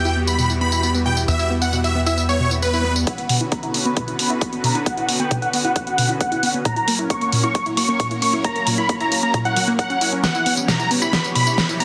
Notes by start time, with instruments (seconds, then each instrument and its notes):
Already playing: analog synth bass E2, supersaw synth E3 G3 B3 F#4 G4 G5
0.05 synth pluck E4, tambourine
0.16 synth pluck B3
0.27 synth pluck B3, supersaw synth B5, tambourine
0.39 synth pluck B2, tambourine
0.50 synth pluck E4, tambourine
0.61 synth pluck B3, supersaw synth B5
0.72 synth pluck E4, tambourine
0.83 synth pluck B3, tambourine
0.94 synth pluck B3, tambourine
1.06 synth pluck B2, supersaw synth G5
1.17 synth pluck E4, tambourine
1.28 analog synth bass E2, synth pluck B3, supersaw synth E5, tambourine
1.39 synth pluck E4, tambourine
1.50 synth pluck B3
1.62 synth pluck B3, supersaw synth F#5, tambourine
1.73 synth pluck B2, tambourine
1.84 synth pluck E4, supersaw synth E5, tambourine
1.95 synth pluck B3
2.06 synth pluck E4, supersaw synth E5, tambourine
2.17 synth pluck B3, tambourine, swell
2.29 synth pluck B3, supersaw synth C#5, tambourine
2.40 synth pluck B2
2.51 synth pluck E4, tambourine
2.62 synth pluck B3, supersaw synth B4, tambourine
2.73 synth pluck E4, tambourine
2.85 synth pluck B3
2.96 synth pluck B3, tambourine
3.07 supersaw synth D3 B3 C#4 F#4 B4 F#5, synth pluck B3, kick, closed hi-hat
3.18 synth pluck B3, closed hi-hat
3.29 synth pluck B2, open hi-hat
3.41 synth pluck E4, closed hi-hat
3.52 synth pluck B3, supersaw synth A#5, kick, closed hi-hat
3.63 synth pluck E4, closed hi-hat
3.74 synth pluck B3, open hi-hat
3.85 synth pluck B3, supersaw synth B5, closed hi-hat
3.97 synth pluck B2, kick, closed hi-hat
4.08 synth pluck E4, closed hi-hat
4.19 synth pluck B3, supersaw synth B5, open hi-hat
4.30 synth pluck E4
4.41 synth pluck B3, kick, closed hi-hat
4.53 synth pluck B3, closed hi-hat
4.64 synth pluck B2, supersaw synth A#5, open hi-hat
4.75 synth pluck E4, closed hi-hat
4.86 synth pluck B3, supersaw synth F#5, kick, closed hi-hat
4.97 synth pluck E4, closed hi-hat
5.09 synth pluck B3, open hi-hat
5.20 synth pluck B3, supersaw synth G5, closed hi-hat
5.31 synth pluck B2, kick, closed hi-hat
5.42 synth pluck E4, supersaw synth F#5, closed hi-hat
5.53 synth pluck B3, open hi-hat
5.64 synth pluck E4, supersaw synth F#5, closed hi-hat
5.76 synth pluck B3, kick, closed hi-hat
5.87 synth pluck B3, supersaw synth F#5, closed hi-hat
5.98 synth pluck B2, open hi-hat
6.09 synth pluck E4, closed hi-hat
6.21 synth pluck B3, supersaw synth F#5, kick, closed hi-hat
6.32 synth pluck E4, closed hi-hat
6.43 synth pluck B3, open hi-hat
6.54 synth pluck B3, closed hi-hat
6.65 synth pluck A#2, supersaw synth F#3 A#3 A#4 C#5 A#5, kick, closed hi-hat
6.76 synth pluck E4, closed hi-hat
6.88 synth pluck A#3, open hi-hat
6.99 synth pluck E4, closed hi-hat
7.10 synth pluck A#3, supersaw synth C#6, kick, closed hi-hat
7.21 synth pluck A#3, closed hi-hat
7.32 synth pluck A#2, open hi-hat
7.43 synth pluck E4, supersaw synth C#6, closed hi-hat
7.55 synth pluck A#3, kick, closed hi-hat
7.66 synth pluck E4, closed hi-hat
7.77 synth pluck A#3, supersaw synth C#6, open hi-hat
7.89 synth pluck A#3, closed hi-hat
8.00 synth pluck A#2, kick, closed hi-hat
8.11 synth pluck E4, closed hi-hat
8.22 synth pluck A#3, supersaw synth C#6, open hi-hat
8.33 synth pluck E4, closed hi-hat
8.44 synth pluck A#3, supersaw synth A#5, kick, closed hi-hat
8.56 synth pluck A#3, closed hi-hat
8.67 synth pluck A#2, open hi-hat
8.78 synth pluck E4, supersaw synth B5
8.89 synth pluck A#3, kick, closed hi-hat
9.00 synth pluck E4, supersaw synth A#5, closed hi-hat
9.12 synth pluck A#3, open hi-hat
9.23 synth pluck A#3, supersaw synth A#5, closed hi-hat
9.34 synth pluck A#2, kick, closed hi-hat
9.45 synth pluck E4, supersaw synth F#5, closed hi-hat
9.56 synth pluck F#3, open hi-hat
9.68 synth pluck A#3, closed hi-hat
9.79 synth pluck A#4, supersaw synth F#5, kick, closed hi-hat
9.90 synth pluck C#4, closed hi-hat
10.01 synth pluck E4, open hi-hat
10.12 synth pluck C#4, closed hi-hat
10.24 supersaw synth E3 G3 G4 C#5 F#5, synth pluck B3, kick, snare, closed hi-hat, tambourine, riser
10.35 synth pluck E4, closed hi-hat, tambourine
10.46 synth pluck B3, open hi-hat
10.57 synth pluck B3, tambourine
10.68 synth pluck B2, supersaw synth A#5, kick, snare, closed hi-hat, tambourine
10.80 synth pluck E4, closed hi-hat, tambourine
10.91 synth pluck B3, open hi-hat
11.02 synth pluck E4, supersaw synth B5, closed hi-hat, tambourine
11.13 synth pluck B3, kick, snare, closed hi-hat, tambourine
11.24 synth pluck B3, closed hi-hat, tambourine
11.35 synth pluck B2, supersaw synth B5, open hi-hat
11.47 synth pluck E4, closed hi-hat, tambourine
11.58 synth pluck B3, kick, snare, closed hi-hat, tambourine
11.69 synth pluck E4, closed hi-hat, tambourine
11.80 synth pluck B3, supersaw synth A#5, open hi-hat